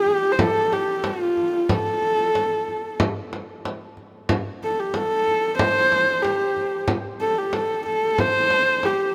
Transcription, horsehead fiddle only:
0.00 0.34 G4 loud
0.32 0.42 C5 medium
0.41 0.75 A4 loud
0.73 1.07 G4 medium
1.05 1.72 F4 medium
1.70 3.00 A4 medium
4.64 4.81 A4 medium
4.80 4.97 G4 medium
4.95 5.58 A4 loud
5.58 6.24 C5 loud
6.22 6.88 G4 medium
7.21 7.40 A4 medium
7.38 7.55 G4 medium
7.54 7.86 A4 medium
7.87 8.22 A4 medium
8.20 8.86 C5 loud
8.85 9.15 G4 medium

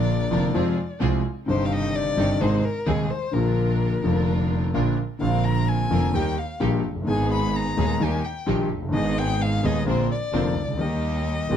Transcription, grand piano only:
0.00 0.28 A#1 medium
0.00 0.28 A#2 medium
0.00 0.27 D3 medium
0.00 0.27 F3 medium
0.00 0.28 A#3 medium
0.00 0.29 F4 medium
0.31 0.51 F1 medium
0.31 0.51 F2 medium
0.31 0.51 D3 medium
0.31 0.51 F3 medium
0.31 0.51 A#3 medium
0.31 0.51 F4 medium
0.54 0.74 F2 medium
0.54 0.74 C3 medium
0.54 0.74 F3 medium
0.54 0.74 G#3 medium
0.54 0.74 F4 medium
1.00 1.20 C2 medium
1.00 1.20 C3 medium
1.00 1.20 F3 medium
1.00 1.20 G#3 medium
1.00 1.20 F4 medium
1.46 2.14 G1 medium
1.46 2.14 G2 medium
1.46 2.13 C3 medium
1.46 2.14 D#3 medium
1.46 2.14 G3 medium
1.50 2.15 D#4 medium
2.17 2.36 G1 medium
2.17 2.37 G2 medium
2.17 2.36 C3 medium
2.17 2.36 D#3 medium
2.17 2.37 G3 medium
2.17 2.37 D#4 medium
2.41 2.60 G#1 medium
2.41 2.60 G#2 medium
2.41 2.60 C3 medium
2.41 2.60 D#3 medium
2.41 2.60 G#3 medium
2.41 2.60 D#4 medium
2.86 3.06 D#1 medium
2.86 3.06 D#2 medium
2.86 3.06 C3 medium
2.86 3.06 D#3 medium
2.86 3.06 G#3 medium
2.86 3.06 D#4 medium
3.31 4.00 A#1 medium
3.31 4.00 A#2 medium
3.31 3.99 D3 medium
3.31 4.00 F3 medium
3.31 4.00 A#3 medium
3.36 4.01 F4 medium
4.03 4.71 F1 medium
4.03 4.71 F2 medium
4.03 4.70 D3 medium
4.03 4.70 F3 medium
4.03 4.71 A#3 medium
4.03 4.72 F4 medium
4.74 4.94 A#1 medium
4.74 4.94 A#2 medium
4.74 4.94 D3 medium
4.74 4.94 F3 medium
4.74 4.94 A#3 medium
4.74 4.94 F4 medium
5.19 5.88 A#1 medium
5.19 5.88 A#2 medium
5.19 5.86 D3 medium
5.19 5.87 A#3 medium
5.19 5.88 C4 medium
5.19 5.88 F4 medium
5.90 6.10 F1 medium
5.90 6.10 F2 medium
5.90 6.10 D3 medium
5.90 6.10 A#3 medium
5.90 6.11 C4 medium
5.90 6.11 F4 medium
6.14 6.34 D#2 medium
6.14 6.34 D#3 medium
6.14 6.34 G3 medium
6.14 6.34 A#3 medium
6.14 6.34 G4 medium
6.60 6.80 A#1 medium
6.60 6.80 A#2 medium
6.60 6.80 D#3 medium
6.60 6.80 G3 medium
6.60 6.80 A#3 medium
6.60 6.81 G4 medium
6.90 6.96 F1 soft
6.95 7.02 F#1 medium
7.02 7.08 G1 medium
7.02 7.73 D#3 medium
7.02 7.73 G#3 medium
7.07 7.74 G#1 medium
7.07 7.74 G#2 medium
7.07 7.74 B3 medium
7.07 7.75 G#4 medium
7.77 7.97 D#1 medium
7.77 7.97 D#2 medium
7.77 7.97 D#3 medium
7.77 7.97 G#3 medium
7.77 7.97 B3 medium
7.77 7.97 G#4 medium
8.00 8.20 D#2 medium
8.00 8.20 D#3 medium
8.00 8.20 G3 medium
8.00 8.20 A#3 medium
8.00 8.20 G4 medium
8.46 8.66 A#1 medium
8.46 8.66 A#2 medium
8.46 8.66 D#3 medium
8.46 8.66 G3 medium
8.46 8.67 A#3 medium
8.46 8.67 G4 medium
8.77 8.82 F1 soft
8.82 8.88 F#1 medium
8.88 8.94 G1 medium
8.88 9.59 D#3 medium
8.92 9.60 G#1 medium
8.92 9.60 G#2 medium
8.92 9.59 G#3 medium
8.92 9.60 B3 medium
8.92 9.61 G#4 medium
9.63 9.83 D#1 medium
9.63 9.83 D#2 medium
9.63 9.83 D#3 medium
9.63 9.83 G#3 medium
9.63 9.83 B3 medium
9.63 9.83 G#4 medium
9.86 10.06 A#1 medium
9.86 10.06 A#2 medium
9.86 10.06 D3 medium
9.86 10.06 A#3 medium
9.86 10.06 C4 medium
9.86 10.06 F4 medium
10.33 10.53 F1 medium
10.33 10.53 F2 medium
10.33 10.53 D3 medium
10.33 10.53 A#3 medium
10.33 10.53 C4 medium
10.33 10.53 F4 medium
10.62 10.68 C2 soft
10.68 10.74 C#2 medium
10.73 10.79 D2 medium
10.77 11.46 D#2 medium
10.77 11.46 D#3 medium
10.77 11.46 G3 medium
10.77 11.47 A#3 medium
10.82 11.47 G4 medium
11.49 11.57 A#1 medium
11.49 11.57 A#2 medium
11.49 11.57 D#3 medium
11.49 11.57 G3 medium
11.49 11.57 A#3 medium
11.49 11.57 G4 medium

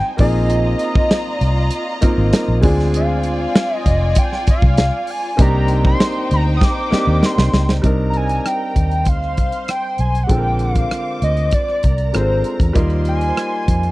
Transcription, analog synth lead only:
0.00 0.15 G5 loud
0.20 1.34 D#5 loud
1.34 1.99 D5 loud
2.96 3.76 F5 medium
3.76 4.20 D#5 medium
4.18 4.48 G5 medium
4.50 5.12 F5 medium
5.11 5.40 G#5 medium
5.42 5.83 A#5 loud
5.87 6.29 C6 loud
6.34 6.44 A#5 loud
6.57 6.66 D#6 medium
6.64 7.27 D6 loud
7.26 7.70 C6 loud
8.10 8.18 A#5 medium
8.17 8.48 G#5 loud
8.47 9.10 G5 medium
9.09 9.72 F5 loud
9.70 10.02 G5 loud
10.00 10.25 G#5 medium
10.23 10.32 F#5 medium
10.30 10.63 G5 loud
10.61 11.22 F5 medium
11.24 11.56 D#5 medium
11.54 12.15 D5 medium
12.16 12.58 C5 medium
13.08 13.91 G#5 loud

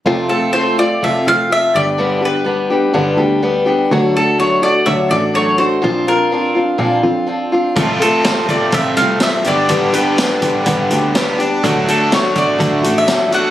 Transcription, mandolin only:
0.29 0.52 A4 medium
0.53 0.78 C5 medium
0.79 1.03 D5 medium
1.04 1.25 E5 medium
1.28 1.52 F5 medium
1.52 1.76 E5 medium
1.76 2.25 D5 medium
2.25 3.16 B4 medium
4.17 4.39 A4 medium
4.40 4.63 C#5 medium
4.63 4.88 D5 medium
4.86 5.12 E5 medium
5.11 5.35 D5 medium
5.35 5.58 C#5 medium
5.58 6.08 C5 medium
6.08 7.01 A#4 medium
8.02 8.24 A4 medium
8.25 8.50 C5 medium
8.50 8.75 D5 medium
8.74 8.97 E5 medium
8.97 9.22 F5 medium
9.23 9.47 E5 medium
9.48 9.92 D5 medium
9.94 10.87 B4 medium
11.90 12.13 A4 medium
12.14 12.35 C#5 medium
12.38 12.99 D5 medium
12.98 13.34 E5 medium
13.34 13.51 F#5 medium

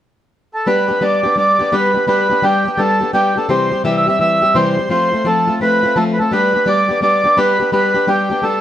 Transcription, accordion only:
0.54 0.67 A4 medium
0.67 1.03 B4 medium
1.02 1.36 D5 medium
1.38 1.74 D5 loud
1.73 2.06 B4 medium
2.08 2.44 B4 medium
2.44 2.80 G4 medium
2.78 3.11 A4 medium
3.14 3.38 G4 medium
3.37 3.50 A4 medium
3.49 3.82 C5 loud
3.85 3.95 E5 medium
3.97 4.07 E5 medium
4.08 4.19 E5 medium
4.20 4.56 E5 loud
4.55 4.89 C5 medium
4.91 5.27 C5 medium
5.27 5.59 A4 medium
5.62 5.98 B4 medium
5.96 6.04 A4 medium
6.14 6.19 B4 medium
6.19 6.32 A4 medium
6.32 6.68 B4 medium
6.68 7.00 D5 medium
7.02 7.38 D5 medium
7.38 7.70 B4 medium
7.73 8.09 B4 medium
8.08 8.44 G4 medium
8.43 8.61 A4 medium

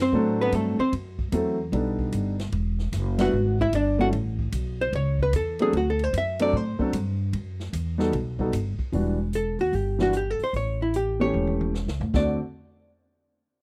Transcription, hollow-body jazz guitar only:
0.02 0.38 C4 medium
0.02 0.38 C5 medium
0.41 0.54 B3 medium
0.41 0.54 B4 medium
0.55 0.79 A3 medium
0.55 0.79 A4 medium
0.80 0.93 C4 medium
0.80 0.93 C5 medium
3.21 3.58 F#4 medium
3.21 3.57 F#5 medium
3.61 3.74 E4 medium
3.61 3.74 E5 medium
3.75 4.00 D4 medium
3.75 4.00 D5 medium
4.01 4.09 F#4 medium
4.01 4.08 F#5 medium
4.81 4.94 C5 medium
4.96 5.20 C#5 medium
5.23 5.35 B4 medium
5.36 5.60 A4 medium
5.62 5.74 G#4 medium
5.77 5.88 F#4 medium
5.90 6.04 A4 medium
6.04 6.15 C5 medium
6.18 6.41 E5 loud
6.42 6.57 D5 loud
6.57 7.75 C5 medium
9.35 9.60 A4 medium
9.61 9.76 F#4 medium
9.76 10.00 G4 medium
10.02 10.15 F#4 medium
10.17 10.30 G4 medium
10.30 10.42 A4 medium
10.44 10.55 C5 medium
10.56 10.80 C#5 medium
10.82 10.95 E4 medium
10.96 11.20 G4 medium
11.21 12.04 C#5 medium
12.16 12.39 D5 medium

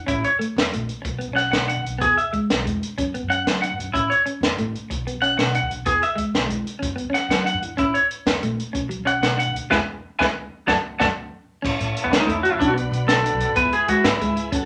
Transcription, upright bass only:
0.08 0.23 A1 medium
0.56 0.72 E2 loud
0.73 0.88 A#1 medium
1.05 1.20 B1 medium
1.28 1.51 B1 medium
1.52 1.75 B2 medium
1.76 1.84 D2 medium
1.84 2.00 B1 medium
2.01 2.16 E2 loud
2.50 2.65 B1 medium
2.66 2.81 E2 medium
2.97 3.12 F#2 medium
3.23 3.45 F#2 medium
3.47 3.69 F#3 medium
3.71 3.78 F#2 medium
3.79 3.93 F#2 medium
3.95 4.09 A1 medium
4.41 4.56 E2 medium
4.57 4.72 A1 medium
4.90 5.05 B1 medium
5.14 5.36 B1 medium
5.38 5.60 B2 medium
5.62 5.69 D2 medium
5.69 5.85 B1 medium
5.86 6.01 E2 medium
6.34 6.49 B1 medium
6.50 6.65 E2 medium
6.83 6.98 F#2 medium
7.04 7.28 F#2 medium
7.29 7.52 F#3 medium
7.54 7.61 F#2 medium
7.62 7.77 E2 medium
7.78 7.93 A1 medium
8.26 8.41 E2 medium
8.42 8.57 A#1 medium
8.75 8.90 B1 medium
8.98 9.20 B1 medium
9.21 9.45 B2 medium
9.46 9.53 D2 medium
9.54 9.70 D2 medium
9.71 9.77 E2 medium
10.20 10.26 E2 medium
10.68 10.74 F#1 medium
11.01 11.06 F#1 medium
11.64 11.71 A1 medium
11.80 11.95 A2 loud
12.05 12.11 E2 loud
12.11 12.27 C#2 medium
12.28 12.50 E2 medium
12.52 12.60 F#2 medium
12.60 12.90 B1 medium
12.91 12.99 B2 loud
13.07 13.22 B1 loud
13.32 13.40 B1 medium
13.48 13.55 G#1 medium
13.56 13.63 E2 loud
13.64 13.79 C#2 medium
14.04 14.19 G#2 medium
14.19 14.50 C#2 medium
14.52 14.60 F#2 medium

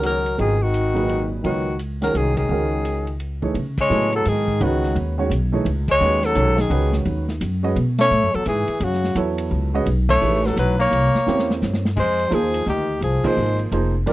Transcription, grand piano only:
0.00 0.21 D#3 medium
0.00 0.21 G#3 medium
0.00 0.21 C#4 medium
0.00 0.21 F#4 medium
0.00 0.21 A#4 medium
0.37 0.58 C#3 medium
0.37 0.58 F#3 soft
0.37 0.58 B3 soft
0.37 0.59 F4 soft
0.37 0.59 G#4 medium
0.94 1.41 A#2 medium
0.94 1.40 F#3 medium
0.94 1.41 D#4 medium
0.94 1.41 G#4 medium
0.94 1.41 B4 medium
1.44 1.64 F#3 medium
1.44 1.64 B3 medium
1.44 1.64 F4 medium
1.44 1.65 A#4 soft
1.44 1.65 C#5 medium
2.02 2.47 D#3 medium
2.02 2.47 G#3 medium
2.02 2.48 C#4 medium
2.02 2.48 F#4 medium
2.02 2.48 A#4 medium
2.50 3.03 D#3 medium
2.50 3.03 G#3 medium
2.50 3.03 C#4 medium
2.50 3.03 F#4 medium
2.50 3.04 A#4 medium
3.42 3.54 E3 medium
3.42 3.54 A3 medium
3.42 3.54 D#4 medium
3.42 3.54 G#4 medium
3.42 3.54 C#5 medium
3.89 4.42 C#3 medium
3.89 4.43 F#3 medium
3.89 4.43 B3 medium
3.89 4.43 E4 medium
3.89 4.43 A4 medium
4.60 5.13 D#3 medium
4.60 5.13 G#3 medium
4.60 5.14 C#4 medium
4.60 5.14 F#4 medium
4.60 5.14 B4 medium
5.18 5.29 D#3 medium
5.18 5.29 G#3 medium
5.18 5.30 C#4 medium
5.18 5.30 F#4 medium
5.18 5.30 C#5 medium
5.52 5.64 E3 medium
5.52 5.64 A3 medium
5.52 5.65 D#4 medium
5.52 5.65 G#4 medium
5.52 5.65 C#5 medium
6.00 6.33 D#3 medium
6.00 6.34 G#3 medium
6.00 6.34 C#4 medium
6.00 6.35 F#4 medium
6.00 6.35 B4 medium
6.35 6.55 D#3 medium
6.35 6.56 G#3 medium
6.35 6.56 C#4 medium
6.35 6.56 F#4 medium
6.35 6.56 C#5 medium
6.70 7.23 D#3 medium
6.70 7.23 G#3 medium
6.70 7.24 C#4 medium
6.70 7.24 F#4 medium
6.70 7.24 B4 medium
7.63 7.75 G#3 medium
7.63 7.75 C#4 medium
7.63 7.75 F#4 medium
7.63 7.75 B4 medium
7.63 7.75 D#5 medium
9.16 9.69 F#3 medium
9.16 9.69 B3 medium
9.16 9.69 E4 medium
9.16 9.70 A4 medium
9.16 9.70 C#5 medium
9.74 9.85 G#3 medium
9.74 9.86 C#4 medium
9.74 9.86 F#4 medium
9.74 9.86 B4 medium
9.74 9.86 D#5 medium
10.21 10.74 E3 medium
10.21 10.75 A3 medium
10.21 10.75 D#4 medium
10.21 10.75 G#4 medium
10.21 10.75 B4 medium
11.27 11.80 A#3 medium
11.27 11.80 C4 medium
11.27 11.80 C#4 medium
11.27 11.80 E4 medium
11.27 11.80 G4 medium
12.30 12.84 F3 medium
12.30 12.84 A#3 medium
12.30 12.84 D#4 medium
12.30 12.84 G#4 medium
12.30 12.85 C5 medium
13.24 13.69 F3 medium
13.24 13.70 A#3 medium
13.24 13.70 D#4 medium
13.24 13.70 G#4 medium
13.24 13.70 C5 medium
13.72 13.92 F3 medium
13.72 13.92 A#3 medium
13.72 13.92 D#4 medium
13.72 13.93 G#4 medium
13.72 13.93 C5 medium
14.06 14.13 G3 medium
14.06 14.13 C4 medium
14.06 14.13 F4 medium
14.06 14.13 A#4 medium
14.06 14.13 D5 medium

